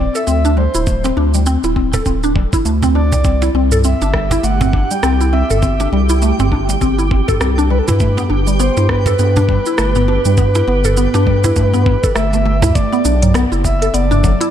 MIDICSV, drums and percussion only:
0, 0, Header, 1, 3, 480
1, 0, Start_track
1, 0, Tempo, 594059
1, 706, Time_signature, 4, 2, 24, 8
1, 11720, End_track
2, 0, Start_track
2, 0, Title_t, "Cajon"
2, 851, Note_on_c, 9, 38, 75
2, 932, Note_off_c, 9, 38, 0
2, 1326, Note_on_c, 9, 38, 51
2, 1407, Note_off_c, 9, 38, 0
2, 1563, Note_on_c, 9, 38, 56
2, 1564, Note_on_c, 9, 36, 80
2, 1644, Note_off_c, 9, 38, 0
2, 1645, Note_off_c, 9, 36, 0
2, 2282, Note_on_c, 9, 36, 74
2, 2363, Note_off_c, 9, 36, 0
2, 2524, Note_on_c, 9, 36, 80
2, 2605, Note_off_c, 9, 36, 0
2, 2763, Note_on_c, 9, 38, 76
2, 2843, Note_off_c, 9, 38, 0
2, 3245, Note_on_c, 9, 38, 49
2, 3326, Note_off_c, 9, 38, 0
2, 3482, Note_on_c, 9, 36, 83
2, 3484, Note_on_c, 9, 38, 60
2, 3562, Note_off_c, 9, 36, 0
2, 3565, Note_off_c, 9, 38, 0
2, 3723, Note_on_c, 9, 36, 85
2, 3804, Note_off_c, 9, 36, 0
2, 4686, Note_on_c, 9, 38, 72
2, 4767, Note_off_c, 9, 38, 0
2, 5169, Note_on_c, 9, 38, 59
2, 5250, Note_off_c, 9, 38, 0
2, 5412, Note_on_c, 9, 38, 57
2, 5493, Note_off_c, 9, 38, 0
2, 6372, Note_on_c, 9, 36, 86
2, 6453, Note_off_c, 9, 36, 0
2, 6608, Note_on_c, 9, 38, 70
2, 6689, Note_off_c, 9, 38, 0
2, 7089, Note_on_c, 9, 38, 58
2, 7170, Note_off_c, 9, 38, 0
2, 7319, Note_on_c, 9, 36, 78
2, 7321, Note_on_c, 9, 38, 53
2, 7400, Note_off_c, 9, 36, 0
2, 7402, Note_off_c, 9, 38, 0
2, 7570, Note_on_c, 9, 36, 89
2, 7650, Note_off_c, 9, 36, 0
2, 8527, Note_on_c, 9, 38, 78
2, 8608, Note_off_c, 9, 38, 0
2, 9000, Note_on_c, 9, 38, 62
2, 9081, Note_off_c, 9, 38, 0
2, 9244, Note_on_c, 9, 38, 63
2, 9245, Note_on_c, 9, 36, 78
2, 9325, Note_off_c, 9, 38, 0
2, 9326, Note_off_c, 9, 36, 0
2, 10199, Note_on_c, 9, 36, 87
2, 10280, Note_off_c, 9, 36, 0
2, 11720, End_track
3, 0, Start_track
3, 0, Title_t, "Drums"
3, 122, Note_on_c, 9, 82, 61
3, 203, Note_off_c, 9, 82, 0
3, 220, Note_on_c, 9, 82, 50
3, 301, Note_off_c, 9, 82, 0
3, 363, Note_on_c, 9, 82, 34
3, 444, Note_off_c, 9, 82, 0
3, 602, Note_on_c, 9, 82, 69
3, 683, Note_off_c, 9, 82, 0
3, 701, Note_on_c, 9, 82, 55
3, 703, Note_on_c, 9, 36, 111
3, 782, Note_off_c, 9, 82, 0
3, 784, Note_off_c, 9, 36, 0
3, 841, Note_on_c, 9, 82, 31
3, 922, Note_off_c, 9, 82, 0
3, 1083, Note_on_c, 9, 82, 66
3, 1164, Note_off_c, 9, 82, 0
3, 1181, Note_on_c, 9, 82, 52
3, 1262, Note_off_c, 9, 82, 0
3, 1322, Note_on_c, 9, 82, 30
3, 1403, Note_off_c, 9, 82, 0
3, 1423, Note_on_c, 9, 36, 58
3, 1504, Note_off_c, 9, 36, 0
3, 1563, Note_on_c, 9, 82, 60
3, 1643, Note_off_c, 9, 82, 0
3, 1662, Note_on_c, 9, 82, 54
3, 1663, Note_on_c, 9, 36, 53
3, 1743, Note_off_c, 9, 82, 0
3, 1744, Note_off_c, 9, 36, 0
3, 1805, Note_on_c, 9, 82, 33
3, 1886, Note_off_c, 9, 82, 0
3, 1904, Note_on_c, 9, 36, 106
3, 1984, Note_off_c, 9, 36, 0
3, 2044, Note_on_c, 9, 36, 102
3, 2044, Note_on_c, 9, 82, 67
3, 2125, Note_off_c, 9, 36, 0
3, 2125, Note_off_c, 9, 82, 0
3, 2145, Note_on_c, 9, 82, 54
3, 2225, Note_off_c, 9, 82, 0
3, 2285, Note_on_c, 9, 82, 33
3, 2366, Note_off_c, 9, 82, 0
3, 2524, Note_on_c, 9, 82, 65
3, 2605, Note_off_c, 9, 82, 0
3, 2622, Note_on_c, 9, 82, 51
3, 2623, Note_on_c, 9, 36, 105
3, 2703, Note_off_c, 9, 82, 0
3, 2704, Note_off_c, 9, 36, 0
3, 2764, Note_on_c, 9, 82, 31
3, 2845, Note_off_c, 9, 82, 0
3, 3002, Note_on_c, 9, 45, 77
3, 3004, Note_on_c, 9, 82, 66
3, 3083, Note_off_c, 9, 45, 0
3, 3085, Note_off_c, 9, 82, 0
3, 3102, Note_on_c, 9, 82, 54
3, 3183, Note_off_c, 9, 82, 0
3, 3245, Note_on_c, 9, 82, 30
3, 3325, Note_off_c, 9, 82, 0
3, 3341, Note_on_c, 9, 37, 72
3, 3344, Note_on_c, 9, 36, 61
3, 3422, Note_off_c, 9, 37, 0
3, 3425, Note_off_c, 9, 36, 0
3, 3485, Note_on_c, 9, 82, 58
3, 3566, Note_off_c, 9, 82, 0
3, 3586, Note_on_c, 9, 82, 54
3, 3667, Note_off_c, 9, 82, 0
3, 3725, Note_on_c, 9, 45, 69
3, 3727, Note_on_c, 9, 82, 30
3, 3806, Note_off_c, 9, 45, 0
3, 3808, Note_off_c, 9, 82, 0
3, 3825, Note_on_c, 9, 36, 96
3, 3905, Note_off_c, 9, 36, 0
3, 3966, Note_on_c, 9, 82, 66
3, 4047, Note_off_c, 9, 82, 0
3, 4065, Note_on_c, 9, 37, 73
3, 4066, Note_on_c, 9, 82, 52
3, 4146, Note_off_c, 9, 37, 0
3, 4147, Note_off_c, 9, 82, 0
3, 4207, Note_on_c, 9, 82, 32
3, 4288, Note_off_c, 9, 82, 0
3, 4445, Note_on_c, 9, 45, 71
3, 4447, Note_on_c, 9, 82, 63
3, 4526, Note_off_c, 9, 45, 0
3, 4528, Note_off_c, 9, 82, 0
3, 4545, Note_on_c, 9, 82, 48
3, 4546, Note_on_c, 9, 36, 99
3, 4626, Note_off_c, 9, 82, 0
3, 4627, Note_off_c, 9, 36, 0
3, 4687, Note_on_c, 9, 82, 31
3, 4768, Note_off_c, 9, 82, 0
3, 4924, Note_on_c, 9, 82, 62
3, 5005, Note_off_c, 9, 82, 0
3, 5026, Note_on_c, 9, 82, 55
3, 5106, Note_off_c, 9, 82, 0
3, 5165, Note_on_c, 9, 45, 76
3, 5167, Note_on_c, 9, 82, 28
3, 5246, Note_off_c, 9, 45, 0
3, 5248, Note_off_c, 9, 82, 0
3, 5266, Note_on_c, 9, 36, 57
3, 5347, Note_off_c, 9, 36, 0
3, 5407, Note_on_c, 9, 82, 65
3, 5488, Note_off_c, 9, 82, 0
3, 5505, Note_on_c, 9, 82, 49
3, 5506, Note_on_c, 9, 36, 55
3, 5586, Note_off_c, 9, 82, 0
3, 5587, Note_off_c, 9, 36, 0
3, 5647, Note_on_c, 9, 82, 29
3, 5728, Note_off_c, 9, 82, 0
3, 5746, Note_on_c, 9, 36, 104
3, 5827, Note_off_c, 9, 36, 0
3, 5885, Note_on_c, 9, 45, 80
3, 5887, Note_on_c, 9, 36, 104
3, 5887, Note_on_c, 9, 82, 60
3, 5966, Note_off_c, 9, 45, 0
3, 5968, Note_off_c, 9, 36, 0
3, 5968, Note_off_c, 9, 82, 0
3, 5986, Note_on_c, 9, 37, 72
3, 5987, Note_on_c, 9, 82, 51
3, 6066, Note_off_c, 9, 37, 0
3, 6068, Note_off_c, 9, 82, 0
3, 6129, Note_on_c, 9, 82, 29
3, 6210, Note_off_c, 9, 82, 0
3, 6368, Note_on_c, 9, 82, 63
3, 6448, Note_off_c, 9, 82, 0
3, 6465, Note_on_c, 9, 82, 49
3, 6467, Note_on_c, 9, 36, 100
3, 6546, Note_off_c, 9, 82, 0
3, 6547, Note_off_c, 9, 36, 0
3, 6605, Note_on_c, 9, 45, 78
3, 6607, Note_on_c, 9, 82, 30
3, 6686, Note_off_c, 9, 45, 0
3, 6688, Note_off_c, 9, 82, 0
3, 6846, Note_on_c, 9, 82, 63
3, 6926, Note_off_c, 9, 82, 0
3, 6946, Note_on_c, 9, 82, 53
3, 7026, Note_off_c, 9, 82, 0
3, 7087, Note_on_c, 9, 82, 30
3, 7168, Note_off_c, 9, 82, 0
3, 7184, Note_on_c, 9, 37, 75
3, 7185, Note_on_c, 9, 36, 59
3, 7264, Note_off_c, 9, 37, 0
3, 7266, Note_off_c, 9, 36, 0
3, 7324, Note_on_c, 9, 45, 77
3, 7325, Note_on_c, 9, 82, 61
3, 7405, Note_off_c, 9, 45, 0
3, 7406, Note_off_c, 9, 82, 0
3, 7424, Note_on_c, 9, 82, 52
3, 7504, Note_off_c, 9, 82, 0
3, 7565, Note_on_c, 9, 82, 31
3, 7645, Note_off_c, 9, 82, 0
3, 7666, Note_on_c, 9, 36, 97
3, 7746, Note_off_c, 9, 36, 0
3, 7804, Note_on_c, 9, 82, 62
3, 7884, Note_off_c, 9, 82, 0
3, 7902, Note_on_c, 9, 37, 76
3, 7904, Note_on_c, 9, 82, 52
3, 7983, Note_off_c, 9, 37, 0
3, 7985, Note_off_c, 9, 82, 0
3, 8042, Note_on_c, 9, 45, 81
3, 8043, Note_on_c, 9, 82, 31
3, 8123, Note_off_c, 9, 45, 0
3, 8124, Note_off_c, 9, 82, 0
3, 8284, Note_on_c, 9, 82, 64
3, 8365, Note_off_c, 9, 82, 0
3, 8383, Note_on_c, 9, 82, 51
3, 8385, Note_on_c, 9, 36, 105
3, 8463, Note_off_c, 9, 82, 0
3, 8465, Note_off_c, 9, 36, 0
3, 8523, Note_on_c, 9, 82, 32
3, 8603, Note_off_c, 9, 82, 0
3, 8761, Note_on_c, 9, 45, 81
3, 8762, Note_on_c, 9, 82, 64
3, 8841, Note_off_c, 9, 45, 0
3, 8843, Note_off_c, 9, 82, 0
3, 8863, Note_on_c, 9, 82, 56
3, 8944, Note_off_c, 9, 82, 0
3, 9006, Note_on_c, 9, 82, 30
3, 9087, Note_off_c, 9, 82, 0
3, 9104, Note_on_c, 9, 36, 57
3, 9185, Note_off_c, 9, 36, 0
3, 9244, Note_on_c, 9, 82, 65
3, 9325, Note_off_c, 9, 82, 0
3, 9342, Note_on_c, 9, 82, 54
3, 9344, Note_on_c, 9, 36, 55
3, 9422, Note_off_c, 9, 82, 0
3, 9425, Note_off_c, 9, 36, 0
3, 9483, Note_on_c, 9, 45, 80
3, 9485, Note_on_c, 9, 82, 32
3, 9564, Note_off_c, 9, 45, 0
3, 9566, Note_off_c, 9, 82, 0
3, 9585, Note_on_c, 9, 36, 104
3, 9665, Note_off_c, 9, 36, 0
3, 9725, Note_on_c, 9, 36, 105
3, 9726, Note_on_c, 9, 82, 66
3, 9806, Note_off_c, 9, 36, 0
3, 9807, Note_off_c, 9, 82, 0
3, 9822, Note_on_c, 9, 37, 71
3, 9823, Note_on_c, 9, 82, 53
3, 9902, Note_off_c, 9, 37, 0
3, 9904, Note_off_c, 9, 82, 0
3, 9965, Note_on_c, 9, 82, 32
3, 10046, Note_off_c, 9, 82, 0
3, 10204, Note_on_c, 9, 45, 80
3, 10206, Note_on_c, 9, 82, 59
3, 10285, Note_off_c, 9, 45, 0
3, 10286, Note_off_c, 9, 82, 0
3, 10305, Note_on_c, 9, 36, 122
3, 10305, Note_on_c, 9, 42, 47
3, 10307, Note_on_c, 9, 82, 43
3, 10386, Note_off_c, 9, 36, 0
3, 10386, Note_off_c, 9, 42, 0
3, 10388, Note_off_c, 9, 82, 0
3, 10447, Note_on_c, 9, 82, 21
3, 10528, Note_off_c, 9, 82, 0
3, 10544, Note_on_c, 9, 82, 83
3, 10625, Note_off_c, 9, 82, 0
3, 10686, Note_on_c, 9, 42, 60
3, 10686, Note_on_c, 9, 45, 83
3, 10688, Note_on_c, 9, 82, 36
3, 10767, Note_off_c, 9, 42, 0
3, 10767, Note_off_c, 9, 45, 0
3, 10769, Note_off_c, 9, 82, 0
3, 10787, Note_on_c, 9, 37, 90
3, 10787, Note_on_c, 9, 42, 49
3, 10789, Note_on_c, 9, 82, 46
3, 10868, Note_off_c, 9, 37, 0
3, 10868, Note_off_c, 9, 42, 0
3, 10870, Note_off_c, 9, 82, 0
3, 10927, Note_on_c, 9, 82, 21
3, 11008, Note_off_c, 9, 82, 0
3, 11026, Note_on_c, 9, 36, 62
3, 11028, Note_on_c, 9, 82, 84
3, 11107, Note_off_c, 9, 36, 0
3, 11109, Note_off_c, 9, 82, 0
3, 11169, Note_on_c, 9, 42, 58
3, 11170, Note_on_c, 9, 82, 34
3, 11249, Note_off_c, 9, 42, 0
3, 11251, Note_off_c, 9, 82, 0
3, 11266, Note_on_c, 9, 42, 45
3, 11267, Note_on_c, 9, 82, 45
3, 11347, Note_off_c, 9, 42, 0
3, 11348, Note_off_c, 9, 82, 0
3, 11405, Note_on_c, 9, 45, 73
3, 11406, Note_on_c, 9, 82, 23
3, 11486, Note_off_c, 9, 45, 0
3, 11487, Note_off_c, 9, 82, 0
3, 11506, Note_on_c, 9, 36, 110
3, 11507, Note_on_c, 9, 82, 73
3, 11586, Note_off_c, 9, 36, 0
3, 11588, Note_off_c, 9, 82, 0
3, 11645, Note_on_c, 9, 42, 62
3, 11647, Note_on_c, 9, 82, 34
3, 11720, Note_off_c, 9, 42, 0
3, 11720, Note_off_c, 9, 82, 0
3, 11720, End_track
0, 0, End_of_file